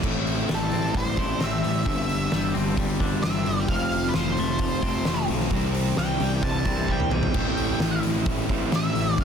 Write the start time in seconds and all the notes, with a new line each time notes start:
0.00 A1 A2 E3 A3, kick, crash
0.05 A2 C4 E4
0.27 open hi-hat
0.49 A1 G3, snare, open hi-hat
0.55 A4
0.72 A1 C4, open hi-hat
0.94 A1 G3 C5, kick, open hi-hat
1.17 A1 A2 E3 A3 E4, kick, open hi-hat
1.40 A1 A2 E3 A3 C4 E5, snare, open hi-hat
1.63 A1 G3, open hi-hat
1.85 G1 G2 D3 G3 C4 D4, kick, open hi-hat
2.09 open hi-hat
2.32 G1 G3, snare, open hi-hat
2.54 G1 C4, open hi-hat
2.77 G1 G3, kick, open hi-hat
2.99 G1 G2 D3 G3 D4, kick, open hi-hat
3.23 G1 G2 D3 G3 C4 E5, snare, open hi-hat
3.46 G1 G3, open hi-hat
3.60 G5
3.68 F1 F2 C3 F3 A3 C4 F5, kick, open hi-hat
3.73 F4
3.92 open hi-hat
4.09 B4
4.14 F1 F3 C5, snare, open hi-hat
4.37 F1 A3, open hi-hat
4.59 F1 F3, kick, open hi-hat
4.82 F1 F2 C3 F3 C4, kick, open hi-hat
5.04 F1 F2 C3 F3 A3, snare, open hi-hat
5.28 B1 F3, open hi-hat
5.40 snare
5.51 C2 C3 E3 G3 C4, kick, open hi-hat
5.55 E4
5.74 open hi-hat
5.97 C2 E3 G5, snare, open hi-hat
6.20 C2 G3, open hi-hat
6.42 C2 E3 A5, kick, open hi-hat
6.65 C2 C3 G3 C4, kick, open hi-hat
6.88 C2 C3 G3 C4, kick
6.93 G5
7.00 mid tom
7.11 B1 E3, mid tom
7.23 floor tom
7.34 A1 A2 E3 A3, kick, crash
7.38 C4 E4
7.57 open hi-hat
7.80 A1, snare, open hi-hat
8.03 A1, open hi-hat
8.26 A1, kick, open hi-hat
8.49 A1 A2 E3 A3, kick, open hi-hat
8.72 A1 A2 E3 A3 E5, snare, open hi-hat
8.95 A1, open hi-hat
9.18 G1 G2 D3 G3 C4 G5, kick, open hi-hat